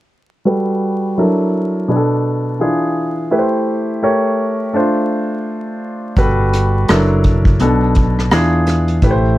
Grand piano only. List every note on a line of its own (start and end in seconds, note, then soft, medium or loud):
0.45 1.17 G3 medium
0.45 1.17 F#4 medium
0.45 1.17 A4 medium
0.45 1.17 B4 medium
1.18 1.89 F#3 medium
1.18 1.88 D4 medium
1.18 1.89 E4 medium
1.18 1.89 A4 medium
1.18 1.89 A#4 medium
1.88 2.60 B2 medium
1.88 2.60 B3 medium
1.88 2.59 D4 medium
1.88 1.97 G#4 soft
1.96 2.64 A4 medium
2.59 3.31 E3 medium
2.59 3.31 D4 medium
2.59 3.31 F4 medium
2.59 3.32 G#4 medium
3.31 4.01 A3 medium
3.31 4.03 E4 medium
3.31 4.01 G4 medium
3.31 3.40 B4 medium
3.39 4.06 C5 medium
4.02 4.72 A3 medium
4.02 4.74 G4 medium
4.02 4.74 A#4 medium
4.02 4.74 C#5 medium
4.73 6.14 A3 medium
4.73 6.14 D4 medium
4.73 6.15 F4 medium
4.73 6.15 C5 medium
6.17 6.88 G3 medium
6.17 6.88 F#4 medium
6.17 6.88 A4 medium
6.17 6.89 B4 medium
6.89 7.60 F#3 medium
6.89 7.59 D4 medium
6.89 7.60 E4 medium
6.89 7.60 A4 medium
6.89 7.61 A#4 medium
7.60 8.31 B2 medium
7.60 8.31 B3 medium
7.60 8.30 D4 medium
7.60 8.32 A4 medium
8.31 9.03 E3 medium
8.31 9.03 D4 medium
8.31 9.03 F4 medium
8.31 9.03 G#4 medium
9.03 9.38 A3 medium
9.03 9.38 E4 medium
9.03 9.38 G4 medium
9.03 9.11 B4 medium
9.11 9.38 C5 medium